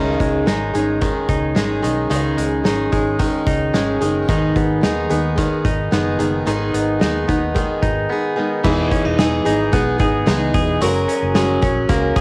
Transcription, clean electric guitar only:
0, 0, Header, 1, 2, 480
1, 0, Start_track
1, 0, Key_signature, 5, "minor"
1, 0, Tempo, 543971
1, 1862, Time_signature, 4, 2, 24, 8
1, 10771, End_track
2, 0, Start_track
2, 0, Title_t, "Clean electric guitar"
2, 0, Program_c, 0, 27
2, 0, Note_on_c, 0, 51, 70
2, 0, Note_on_c, 0, 63, 60
2, 177, Note_on_c, 0, 56, 50
2, 414, Note_off_c, 0, 63, 0
2, 417, Note_on_c, 0, 63, 54
2, 657, Note_off_c, 0, 56, 0
2, 660, Note_on_c, 0, 56, 52
2, 892, Note_off_c, 0, 51, 0
2, 896, Note_on_c, 0, 51, 66
2, 1135, Note_off_c, 0, 63, 0
2, 1139, Note_on_c, 0, 63, 56
2, 1370, Note_off_c, 0, 56, 0
2, 1374, Note_on_c, 0, 56, 57
2, 1612, Note_off_c, 0, 51, 0
2, 1615, Note_on_c, 0, 51, 52
2, 1852, Note_off_c, 0, 51, 0
2, 1856, Note_on_c, 0, 51, 70
2, 1858, Note_off_c, 0, 63, 0
2, 1862, Note_on_c, 0, 63, 57
2, 2091, Note_off_c, 0, 56, 0
2, 2095, Note_on_c, 0, 56, 55
2, 2337, Note_off_c, 0, 63, 0
2, 2340, Note_on_c, 0, 63, 54
2, 2575, Note_off_c, 0, 56, 0
2, 2578, Note_on_c, 0, 56, 54
2, 2815, Note_off_c, 0, 51, 0
2, 2818, Note_on_c, 0, 51, 69
2, 3056, Note_off_c, 0, 63, 0
2, 3059, Note_on_c, 0, 63, 54
2, 3295, Note_off_c, 0, 56, 0
2, 3299, Note_on_c, 0, 56, 54
2, 3541, Note_off_c, 0, 51, 0
2, 3545, Note_on_c, 0, 51, 51
2, 3782, Note_off_c, 0, 51, 0
2, 3786, Note_on_c, 0, 51, 67
2, 3788, Note_off_c, 0, 63, 0
2, 3791, Note_on_c, 0, 63, 58
2, 4022, Note_off_c, 0, 56, 0
2, 4026, Note_on_c, 0, 59, 52
2, 4266, Note_off_c, 0, 63, 0
2, 4269, Note_on_c, 0, 63, 55
2, 4501, Note_off_c, 0, 59, 0
2, 4504, Note_on_c, 0, 59, 52
2, 4744, Note_off_c, 0, 51, 0
2, 4747, Note_on_c, 0, 51, 65
2, 4983, Note_off_c, 0, 63, 0
2, 4987, Note_on_c, 0, 63, 57
2, 5222, Note_off_c, 0, 59, 0
2, 5225, Note_on_c, 0, 59, 56
2, 5462, Note_off_c, 0, 51, 0
2, 5465, Note_on_c, 0, 51, 52
2, 5702, Note_off_c, 0, 51, 0
2, 5705, Note_on_c, 0, 51, 72
2, 5710, Note_off_c, 0, 63, 0
2, 5713, Note_on_c, 0, 63, 61
2, 5942, Note_off_c, 0, 59, 0
2, 5946, Note_on_c, 0, 59, 53
2, 6182, Note_off_c, 0, 63, 0
2, 6185, Note_on_c, 0, 63, 55
2, 6421, Note_off_c, 0, 59, 0
2, 6425, Note_on_c, 0, 59, 49
2, 6660, Note_off_c, 0, 51, 0
2, 6664, Note_on_c, 0, 51, 67
2, 6898, Note_off_c, 0, 63, 0
2, 6902, Note_on_c, 0, 63, 55
2, 7141, Note_off_c, 0, 59, 0
2, 7145, Note_on_c, 0, 59, 56
2, 7382, Note_off_c, 0, 51, 0
2, 7385, Note_on_c, 0, 51, 52
2, 7620, Note_off_c, 0, 51, 0
2, 7624, Note_on_c, 0, 52, 76
2, 7861, Note_off_c, 0, 63, 0
2, 7864, Note_on_c, 0, 61, 57
2, 7891, Note_off_c, 0, 59, 0
2, 7985, Note_off_c, 0, 61, 0
2, 7985, Note_on_c, 0, 63, 53
2, 8106, Note_on_c, 0, 68, 66
2, 8336, Note_off_c, 0, 63, 0
2, 8346, Note_on_c, 0, 63, 55
2, 8586, Note_on_c, 0, 59, 74
2, 8821, Note_off_c, 0, 68, 0
2, 8825, Note_on_c, 0, 68, 61
2, 9054, Note_off_c, 0, 63, 0
2, 9064, Note_on_c, 0, 63, 56
2, 9300, Note_off_c, 0, 68, 0
2, 9303, Note_on_c, 0, 68, 63
2, 9540, Note_off_c, 0, 52, 0
2, 9544, Note_on_c, 0, 54, 81
2, 9590, Note_off_c, 0, 59, 0
2, 9590, Note_off_c, 0, 63, 0
2, 9777, Note_on_c, 0, 61, 56
2, 10015, Note_off_c, 0, 68, 0
2, 10019, Note_on_c, 0, 68, 66
2, 10244, Note_off_c, 0, 61, 0
2, 10255, Note_on_c, 0, 61, 61
2, 10493, Note_on_c, 0, 58, 78
2, 10727, Note_off_c, 0, 68, 0
2, 10730, Note_on_c, 0, 68, 66
2, 10771, Note_off_c, 0, 54, 0
2, 10771, Note_off_c, 0, 58, 0
2, 10771, Note_off_c, 0, 61, 0
2, 10771, Note_off_c, 0, 68, 0
2, 10771, End_track
0, 0, End_of_file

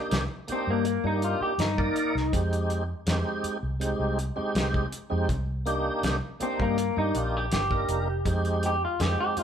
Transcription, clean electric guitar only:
0, 0, Header, 1, 2, 480
1, 0, Start_track
1, 0, Key_signature, -3, "minor"
1, 0, Tempo, 739827
1, 1512, Time_signature, 4, 2, 24, 8
1, 6119, End_track
2, 0, Start_track
2, 0, Title_t, "Clean electric guitar"
2, 0, Program_c, 0, 27
2, 339, Note_on_c, 0, 60, 86
2, 446, Note_off_c, 0, 60, 0
2, 456, Note_on_c, 0, 58, 75
2, 679, Note_off_c, 0, 58, 0
2, 693, Note_on_c, 0, 63, 75
2, 797, Note_off_c, 0, 63, 0
2, 807, Note_on_c, 0, 65, 73
2, 921, Note_off_c, 0, 65, 0
2, 924, Note_on_c, 0, 67, 84
2, 1033, Note_off_c, 0, 67, 0
2, 1039, Note_on_c, 0, 63, 90
2, 1502, Note_off_c, 0, 63, 0
2, 4169, Note_on_c, 0, 60, 82
2, 4282, Note_off_c, 0, 60, 0
2, 4293, Note_on_c, 0, 58, 92
2, 4519, Note_off_c, 0, 58, 0
2, 4531, Note_on_c, 0, 63, 80
2, 4636, Note_off_c, 0, 63, 0
2, 4645, Note_on_c, 0, 65, 81
2, 4780, Note_off_c, 0, 65, 0
2, 4780, Note_on_c, 0, 67, 83
2, 4881, Note_off_c, 0, 67, 0
2, 4888, Note_on_c, 0, 67, 88
2, 5347, Note_off_c, 0, 67, 0
2, 5618, Note_on_c, 0, 67, 78
2, 5727, Note_off_c, 0, 67, 0
2, 5740, Note_on_c, 0, 65, 68
2, 5846, Note_off_c, 0, 65, 0
2, 5846, Note_on_c, 0, 67, 72
2, 5961, Note_off_c, 0, 67, 0
2, 5972, Note_on_c, 0, 67, 88
2, 6077, Note_off_c, 0, 67, 0
2, 6092, Note_on_c, 0, 65, 80
2, 6119, Note_off_c, 0, 65, 0
2, 6119, End_track
0, 0, End_of_file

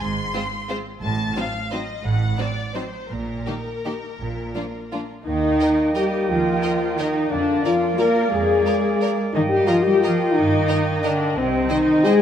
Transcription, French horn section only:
0, 0, Header, 1, 2, 480
1, 0, Start_track
1, 0, Key_signature, -3, "major"
1, 0, Tempo, 339367
1, 7, Time_signature, 3, 2, 24, 8
1, 3368, Tempo, 363196
1, 6728, Tempo, 347625
1, 8168, Tempo, 337648
1, 17057, End_track
2, 0, Start_track
2, 0, Title_t, "French horn section"
2, 0, Program_c, 0, 60
2, 7194, Note_on_c, 0, 63, 73
2, 8106, Note_off_c, 0, 63, 0
2, 8174, Note_on_c, 0, 67, 62
2, 8642, Note_on_c, 0, 65, 69
2, 8645, Note_off_c, 0, 67, 0
2, 9594, Note_on_c, 0, 63, 62
2, 9621, Note_off_c, 0, 65, 0
2, 10075, Note_off_c, 0, 63, 0
2, 10077, Note_on_c, 0, 62, 69
2, 10550, Note_on_c, 0, 65, 65
2, 10558, Note_off_c, 0, 62, 0
2, 11052, Note_on_c, 0, 70, 75
2, 11055, Note_off_c, 0, 65, 0
2, 11507, Note_on_c, 0, 68, 74
2, 11530, Note_off_c, 0, 70, 0
2, 12714, Note_off_c, 0, 68, 0
2, 12954, Note_on_c, 0, 63, 73
2, 13064, Note_off_c, 0, 63, 0
2, 13183, Note_on_c, 0, 67, 71
2, 13437, Note_off_c, 0, 67, 0
2, 13437, Note_on_c, 0, 65, 74
2, 13661, Note_on_c, 0, 67, 72
2, 13697, Note_off_c, 0, 65, 0
2, 13915, Note_on_c, 0, 65, 70
2, 13928, Note_off_c, 0, 67, 0
2, 14369, Note_on_c, 0, 63, 81
2, 14395, Note_off_c, 0, 65, 0
2, 15360, Note_off_c, 0, 63, 0
2, 15382, Note_on_c, 0, 62, 68
2, 15851, Note_off_c, 0, 62, 0
2, 15852, Note_on_c, 0, 60, 71
2, 16312, Note_off_c, 0, 60, 0
2, 16327, Note_on_c, 0, 63, 80
2, 16805, Note_off_c, 0, 63, 0
2, 16825, Note_on_c, 0, 68, 91
2, 17057, Note_off_c, 0, 68, 0
2, 17057, End_track
0, 0, End_of_file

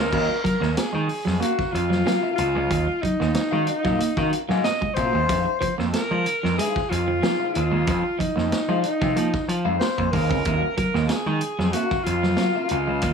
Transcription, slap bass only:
0, 0, Header, 1, 3, 480
1, 0, Start_track
1, 0, Tempo, 645856
1, 89, Time_signature, 4, 2, 24, 8
1, 9760, End_track
2, 0, Start_track
2, 0, Title_t, "Slap bass"
2, 0, Program_c, 0, 36
2, 94, Note_on_c, 0, 39, 101
2, 203, Note_off_c, 0, 39, 0
2, 454, Note_on_c, 0, 39, 94
2, 554, Note_off_c, 0, 39, 0
2, 700, Note_on_c, 0, 51, 91
2, 798, Note_off_c, 0, 51, 0
2, 940, Note_on_c, 0, 41, 83
2, 1038, Note_off_c, 0, 41, 0
2, 1295, Note_on_c, 0, 41, 86
2, 1504, Note_off_c, 0, 41, 0
2, 1770, Note_on_c, 0, 37, 94
2, 1883, Note_off_c, 0, 37, 0
2, 1897, Note_on_c, 0, 37, 77
2, 2011, Note_off_c, 0, 37, 0
2, 2011, Note_on_c, 0, 39, 101
2, 2124, Note_off_c, 0, 39, 0
2, 2384, Note_on_c, 0, 39, 80
2, 2482, Note_off_c, 0, 39, 0
2, 2618, Note_on_c, 0, 51, 90
2, 2719, Note_off_c, 0, 51, 0
2, 2857, Note_on_c, 0, 46, 82
2, 2958, Note_off_c, 0, 46, 0
2, 3101, Note_on_c, 0, 51, 99
2, 3200, Note_off_c, 0, 51, 0
2, 3345, Note_on_c, 0, 44, 101
2, 3442, Note_off_c, 0, 44, 0
2, 3691, Note_on_c, 0, 46, 86
2, 3804, Note_off_c, 0, 46, 0
2, 3820, Note_on_c, 0, 39, 86
2, 3920, Note_off_c, 0, 39, 0
2, 3932, Note_on_c, 0, 41, 94
2, 4045, Note_off_c, 0, 41, 0
2, 4302, Note_on_c, 0, 41, 91
2, 4401, Note_off_c, 0, 41, 0
2, 4543, Note_on_c, 0, 53, 91
2, 4641, Note_off_c, 0, 53, 0
2, 4786, Note_on_c, 0, 41, 79
2, 4883, Note_off_c, 0, 41, 0
2, 5137, Note_on_c, 0, 41, 88
2, 5345, Note_off_c, 0, 41, 0
2, 5617, Note_on_c, 0, 39, 90
2, 5727, Note_off_c, 0, 39, 0
2, 5736, Note_on_c, 0, 39, 85
2, 5836, Note_off_c, 0, 39, 0
2, 5853, Note_on_c, 0, 41, 107
2, 5964, Note_off_c, 0, 41, 0
2, 6219, Note_on_c, 0, 41, 87
2, 6318, Note_off_c, 0, 41, 0
2, 6454, Note_on_c, 0, 53, 84
2, 6555, Note_off_c, 0, 53, 0
2, 6702, Note_on_c, 0, 48, 79
2, 6799, Note_off_c, 0, 48, 0
2, 6808, Note_on_c, 0, 53, 101
2, 6920, Note_off_c, 0, 53, 0
2, 7048, Note_on_c, 0, 53, 95
2, 7160, Note_off_c, 0, 53, 0
2, 7170, Note_on_c, 0, 41, 104
2, 7272, Note_off_c, 0, 41, 0
2, 7422, Note_on_c, 0, 41, 90
2, 7518, Note_off_c, 0, 41, 0
2, 7531, Note_on_c, 0, 39, 89
2, 7658, Note_off_c, 0, 39, 0
2, 7658, Note_on_c, 0, 37, 85
2, 7756, Note_off_c, 0, 37, 0
2, 7774, Note_on_c, 0, 39, 109
2, 7883, Note_off_c, 0, 39, 0
2, 8133, Note_on_c, 0, 39, 86
2, 8233, Note_off_c, 0, 39, 0
2, 8370, Note_on_c, 0, 51, 96
2, 8471, Note_off_c, 0, 51, 0
2, 8610, Note_on_c, 0, 41, 90
2, 8711, Note_off_c, 0, 41, 0
2, 8965, Note_on_c, 0, 41, 92
2, 9175, Note_off_c, 0, 41, 0
2, 9445, Note_on_c, 0, 37, 85
2, 9557, Note_off_c, 0, 37, 0
2, 9575, Note_on_c, 0, 37, 86
2, 9681, Note_off_c, 0, 37, 0
2, 9681, Note_on_c, 0, 39, 101
2, 9760, Note_off_c, 0, 39, 0
2, 9760, End_track
3, 0, Start_track
3, 0, Title_t, "Muted slap bass strokes"
3, 574, Note_on_c, 9, 29, 52
3, 648, Note_off_c, 9, 29, 0
3, 2501, Note_on_c, 9, 29, 45
3, 2575, Note_off_c, 9, 29, 0
3, 2981, Note_on_c, 9, 29, 50
3, 3055, Note_off_c, 9, 29, 0
3, 4419, Note_on_c, 9, 29, 47
3, 4494, Note_off_c, 9, 29, 0
3, 6325, Note_on_c, 9, 29, 52
3, 6400, Note_off_c, 9, 29, 0
3, 8245, Note_on_c, 9, 29, 49
3, 8319, Note_off_c, 9, 29, 0
3, 9760, End_track
0, 0, End_of_file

